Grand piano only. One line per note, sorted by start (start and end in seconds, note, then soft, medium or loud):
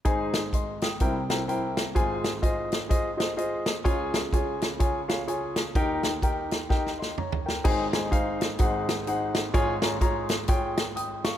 0.05 0.96 G#1 medium
0.05 0.97 G#2 medium
0.05 0.40 D#4 medium
0.05 0.40 G#4 medium
0.05 0.40 C5 medium
0.05 0.40 G#5 loud
0.53 0.81 D#5 soft
0.53 0.80 C6 medium
0.82 1.00 G5 medium
0.82 1.27 D#6 medium
1.01 1.92 C2 medium
1.01 1.92 C3 medium
1.01 1.20 E4 medium
1.01 1.20 A#4 medium
1.01 1.20 C5 medium
1.01 1.20 G5 medium
1.29 1.42 E4 medium
1.29 1.42 A#4 medium
1.29 1.42 C5 medium
1.29 1.42 G5 medium
1.48 1.83 E4 medium
1.48 1.83 A#4 medium
1.48 1.83 C5 medium
1.48 1.83 G5 medium
1.95 3.81 G#1 medium
1.95 3.81 G#2 medium
1.95 2.30 F4 medium
1.95 2.30 G#4 medium
1.95 2.30 C5 medium
1.95 2.30 G#5 loud
2.42 2.77 F4 medium
2.42 2.77 G#4 medium
2.42 2.77 C5 medium
2.42 2.77 D#5 medium
2.89 3.09 F4 medium
2.89 3.09 G#4 medium
2.89 3.09 C5 medium
2.89 3.09 D#5 medium
3.17 3.31 F4 medium
3.17 3.31 G#4 medium
3.17 3.31 C5 medium
3.17 3.31 D#5 medium
3.37 3.72 F4 medium
3.37 3.72 G#4 medium
3.37 3.72 C5 medium
3.37 3.72 D#5 medium
3.84 5.71 C#2 medium
3.84 5.71 C#3 medium
3.84 4.19 F4 loud
3.84 4.19 G#4 medium
3.84 4.20 C#5 medium
3.84 4.20 G#5 loud
4.33 4.67 F4 medium
4.33 4.68 G#4 medium
4.33 4.68 C#5 medium
4.33 4.68 G#5 medium
4.79 4.99 F4 medium
4.79 4.99 G#4 medium
4.79 4.99 C#5 medium
4.79 4.99 G#5 medium
5.08 5.21 F4 medium
5.08 5.21 G#4 medium
5.08 5.21 C#5 medium
5.08 5.21 F5 medium
5.28 5.62 F4 medium
5.28 5.62 G#4 medium
5.28 5.62 C#5 medium
5.28 5.63 G#5 medium
5.76 7.61 D#2 medium
5.76 7.62 D#3 medium
5.76 6.10 D#4 loud
5.76 6.10 G4 medium
5.76 6.10 A#4 medium
5.76 6.10 G5 loud
6.22 6.57 D#4 medium
6.22 6.57 G4 medium
6.22 6.58 A#4 medium
6.22 6.58 G5 medium
6.69 6.89 D#4 medium
6.69 6.89 G4 medium
6.69 6.89 A#4 medium
6.69 6.89 G5 medium
6.99 7.17 D#5 soft
6.99 7.17 C6 medium
7.18 7.45 C#5 medium
7.18 7.45 A#5 medium
7.46 7.91 A#4 medium
7.46 7.91 G5 medium
7.64 8.56 G#1 medium
7.64 8.56 G#2 medium
7.64 7.83 D#4 loud
7.64 7.84 G#4 loud
7.64 7.84 C5 medium
7.64 7.84 G#5 loud
7.94 8.06 D#4 medium
7.94 8.06 G#4 medium
7.94 8.06 C5 medium
7.94 8.07 G#5 medium
8.11 8.46 D#4 medium
8.11 8.46 G#4 medium
8.11 8.46 C5 medium
8.11 8.47 F5 medium
8.59 9.50 G#1 medium
8.59 9.50 G#2 medium
8.59 8.94 D#4 medium
8.59 8.94 G#4 medium
8.59 8.94 C5 medium
8.59 8.94 F#5 medium
9.07 9.42 D#4 medium
9.07 9.42 G#4 medium
9.07 9.42 C5 medium
9.07 9.42 F#5 medium
9.54 11.38 G#1 medium
9.54 11.38 G#2 medium
9.54 9.73 F4 loud
9.54 9.73 G#4 loud
9.54 9.73 C#5 loud
9.54 9.73 G#5 loud
9.82 9.95 F4 medium
9.82 9.95 G#4 medium
9.82 9.95 C#5 medium
9.82 9.95 A#5 medium
10.01 10.36 F4 medium
10.01 10.36 G#4 medium
10.01 10.36 C#5 medium
10.01 10.36 A#5 medium
10.48 10.83 F4 medium
10.48 10.83 G#4 medium
10.48 10.83 C#5 medium
10.48 10.83 G5 medium
10.96 11.24 G5 medium
10.96 11.23 D#6 medium
11.24 11.38 F5 medium
11.24 11.38 C#6 medium